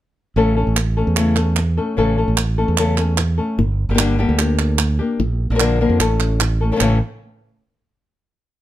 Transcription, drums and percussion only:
0.77 clap medium
1.16 clap medium
1.36 clap medium
1.56 clap medium
2.37 clap medium
2.77 clap medium
2.98 clap medium
3.18 clap medium
3.99 clap medium
4.39 clap medium
4.59 clap medium
4.79 clap medium
5.60 clap medium
6.00 clap medium
6.20 clap medium
6.40 clap medium
6.80 clap medium

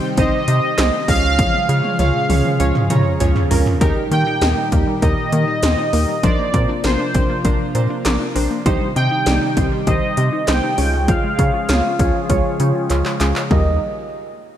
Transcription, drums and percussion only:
0.17 kick medium
0.17 closed hi-hat medium
0.48 closed hi-hat medium
0.78 snare loud
0.78 clap loud
0.78 closed hi-hat medium
1.08 kick medium
1.08 open hi-hat medium
1.39 kick loud
1.39 closed hi-hat medium
1.39 high tom medium
1.54 high tom medium
1.69 closed hi-hat medium
1.84 high tom medium
1.99 closed hi-hat medium
1.99 mid tom medium
2.30 open hi-hat medium
2.30 mid tom medium
2.45 mid tom medium
2.60 closed hi-hat medium
2.75 mid tom medium
2.90 closed hi-hat medium
2.90 mid tom loud
3.20 closed hi-hat medium
3.20 floor tom loud
3.36 floor tom loud
3.51 floor tom loud
3.51 open hi-hat medium
3.66 floor tom loud
3.81 kick loud
3.81 closed hi-hat medium
4.12 closed hi-hat medium
4.41 snare loud
4.41 closed hi-hat medium
4.72 kick medium
4.72 closed hi-hat medium
5.02 kick medium
5.02 closed hi-hat medium
5.32 closed hi-hat medium
5.63 snare loud
5.63 closed hi-hat medium
5.93 open hi-hat medium
6.23 kick loud
6.23 closed hi-hat medium
6.54 kick medium
6.54 closed hi-hat medium
6.84 snare loud
6.84 closed hi-hat medium
7.14 kick medium
7.14 closed hi-hat medium
7.45 kick medium
7.45 closed hi-hat medium
7.75 closed hi-hat medium
8.05 snare loud
8.05 clap medium
8.05 closed hi-hat medium
8.36 open hi-hat medium
8.66 kick loud
8.66 closed hi-hat medium
8.96 closed hi-hat medium
9.26 snare loud
9.26 closed hi-hat medium
9.57 kick medium
9.57 closed hi-hat medium
9.87 kick medium
9.87 closed hi-hat medium
10.17 closed hi-hat medium
10.47 snare loud
10.47 clap medium
10.47 closed hi-hat medium
10.78 open hi-hat medium
11.08 kick loud
11.08 closed hi-hat medium
11.39 kick medium
11.39 closed hi-hat medium
11.69 snare loud
11.69 closed hi-hat medium
11.99 kick medium
11.99 closed hi-hat medium
12.30 kick medium
12.30 closed hi-hat medium
12.60 closed hi-hat medium
12.90 clap medium
12.90 closed hi-hat medium
13.05 clap medium
13.20 clap medium
13.20 closed hi-hat medium
13.36 clap loud
13.51 kick loud
13.51 floor tom loud

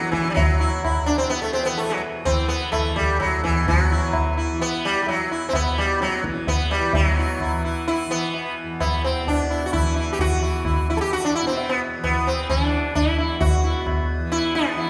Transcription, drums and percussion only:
0.01 tabla te medium
0.13 tabla ke medium
0.25 tabla te medium
0.37 tabla tin loud
0.37 tabla ge medium
0.85 tabla na medium
0.85 tabla ge medium
1.08 tabla te medium
1.31 tabla tin medium
1.79 tabla tin medium
2.26 tabla na medium
2.26 tabla ge medium
2.73 tabla na medium
2.73 tabla ge medium
2.96 tabla ge medium
3.20 tabla na medium
3.20 tabla ge medium
3.44 tabla ge medium
3.67 tabla tin loud
3.67 tabla ge medium
4.13 tabla na medium
4.13 tabla ge medium
4.60 tabla tin medium
5.07 tabla tin medium
5.53 tabla na medium
5.53 tabla ge medium
6.00 tabla te medium
6.12 tabla te medium
6.24 tabla ke medium
6.35 tabla te medium
6.47 tabla tin medium
6.47 tabla ge medium
6.70 tabla na medium
6.93 tabla tin loud
6.93 tabla ge medium
7.41 tabla na medium
7.41 tabla ge medium
7.88 tabla tin medium
8.34 tabla tin medium
8.81 tabla na medium
8.81 tabla ge medium
9.27 tabla tin medium
9.27 tabla ge medium
9.73 tabla tin medium
9.73 tabla ge medium
9.96 tabla na medium
10.19 tabla tin loud
10.19 tabla ge medium
10.65 tabla na medium
10.65 tabla ge medium
11.11 tabla tin medium
11.34 tabla na medium
11.57 tabla tin medium
12.04 tabla na medium
12.04 tabla ge medium
12.50 tabla na medium
12.50 tabla ge medium
12.73 tabla te medium
12.96 tabla tin medium
12.96 tabla ge medium
13.19 tabla na medium
13.41 tabla tin loud
13.41 tabla ge medium
13.87 tabla na medium
13.87 tabla ge medium
14.32 tabla tin medium
14.55 tabla na soft
14.78 tabla tin medium

